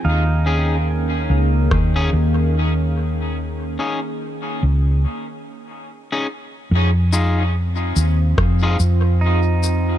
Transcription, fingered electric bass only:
X:1
M:4/4
L:1/8
Q:"Swing 16ths" 1/4=72
K:Fm
V:1 name="Fingered electric bass" clef=bass
E,,3 D,, E,, E,,3- | E,, z2 D,, z4 | F,,3 E,, F,, F,,3 |]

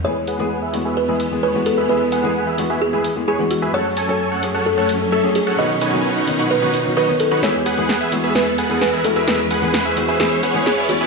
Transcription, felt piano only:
X:1
M:4/4
L:1/16
Q:1/4=130
K:E
V:1 name="Felt piano"
[E,G,B,G]3 [E,G,B,G] z2 [E,G,B,F]3 [E,G,B,G] z [E,G,B,G]2 [E,G,B,F]3 | [E,G,B,G]3 [E,G,B,G] z2 [E,G,B,F]3 [E,G,B,G] z [E,G,B,G]2 [E,G,B,F]3 | [F,A,CA]3 [F,A,CA] z2 [F,A,CG]3 [F,A,CA] z [F,A,CA]2 [F,A,CG]3 | [D,B,CF]3 [D,B,CF] z2 [D,B,CD]3 [D,B,CF] z [D,B,CF]2 [D,B,CD]3 |
[E,G,B,G]3 [E,G,B,G] z2 [E,G,B,F]2 [E,G,B,G]3 [E,G,B,G] z2 [E,G,B,F]2 | [E,G,B,G]3 [E,G,B,G] z2 [E,G,B,F]2 [E,G,B,G]3 [E,G,B,G] z2 [E,G,B,F]2 |]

